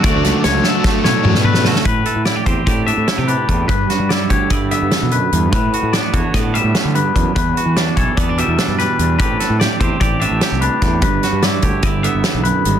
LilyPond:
<<
  \new Staff \with { instrumentName = "Clean electric guitar" } { \time 9/8 \key a \mixolydian \tempo 4. = 98 d''4 cis''8 a'4 cis''4 b'8 a'8 | b'4 d''8 c''8 d''8 e''4 b'4 | b'4 d''8 cis''8 d''8 e''4 b'4 | b'4 d''8 cis''8 d''8 e''4 b'4 |
b'4 d''8 cis''8 d''8 e''4 b'4 | b'4 d''8 c''8 d''8 e''4 b'4 | b'4 d''8 cis''8 d''8 e''4 b'4 | }
  \new Staff \with { instrumentName = "Clean electric guitar" } { \time 9/8 \key a \mixolydian << { <a fis'>2 a4. a8 <a cis' fis'>8 | r8 a'8 e'16 g'16 g'8 g'8 d'8 e'16 g'16 d'4 | r8 fis'8 e'8 g'8 e'8 b2 | r8 fis'8 b8 fis'8 b8 g2~ |
g8 fis'8 d'8 a'8 b16 d'16 g8 d'8 g4 | <c' d' g'>8 a'8 g'8 g'8 g'8 d'8 g'8 d'4 | r8 fis'8 e'8 g'8 e'8 b2 | } \\ { d,4 d4. a,4. d,8 | a,4. c'4 a,4. a,8 | g,4. d4 d8 e,8 fis,8 g,8 | a,4. d4 a,8 a,8 g,8 fis,8 |
e,4. e4 b,4. e,8 | a,4. c'4 a,4. a,8 | g,4. d4 d8 e,8 fis,8 g,8 | } >> }
  \new Staff \with { instrumentName = "Overdriven electric guitar" } { \clef bass \time 9/8 \key a \mixolydian <d fis a d'>4. <d fis a d'>4. <d fis a d'>4. | r1 r8 | r1 r8 | r1 r8 |
r1 r8 | r1 r8 | r1 r8 | }
  \new Staff \with { instrumentName = "Fingered electric bass" } { \clef bass \time 9/8 \key a \mixolydian d,16 d,16 cis,16 r16 cis,8 r4 b,16 r16 fis,16 b,4~ b,16 | a,8 r16 a,8 r16 e,16 r16 a,8. a,16 r16 c8 r16 e,8 | g,8 r16 g8 r16 d,16 r16 g,8. g,16 r16 b,8 r16 e,8 | a,8 r16 a,8 r16 e,16 r16 a,8. a,16 r16 d8 r16 e,16 r16 |
e,8 r16 e8 r16 b,,16 r16 e,8. e,16 r16 g,8 r16 e,8 | a,,8 r16 a,8 r16 e,16 r16 a,,8. a,,16 r16 c,8 r16 e,8 | g,,8 r16 g,8 r16 d,16 r16 g,,8. g,,16 r16 b,,8 r16 gis,,8 | }
  \new DrumStaff \with { instrumentName = "Drums" } \drummode { \time 9/8 <hh bd>8 <hh sn>8 <hh sn>8 sn8 <bd sn>8 sn8 toml16 sn16 toml16 sn16 sn16 sn16 | <hh bd>8 hh8 <hh sn>8 <hh bd>8 <hh bd>8 hh8 <hh sn>8 hh8 <hh bd>8 | <hh bd>8 <hh sn>8 <hh sn>8 <hh bd>8 <hh bd>8 hh8 <hh sn>8 hh8 hh8 | <hh bd>8 hh8 <hh sn>8 <hh bd>8 <hh bd sn>8 hh8 <hh sn>8 hh8 <hh bd>8 |
<hh bd>8 hh8 <hh sn>8 <hh bd>8 <hh bd>8 hh8 <hh sn>8 <hh sn>8 hh8 | <hh bd>8 <hh sn>8 <hh sn>8 <hh bd>8 <hh bd>8 hh8 <hh sn>8 hh8 <hh bd sn>8 | <hh bd>8 <hh sn>8 <hh sn>8 <hh bd>8 <hh bd>8 hh8 <hh sn>8 hh8 hh8 | }
>>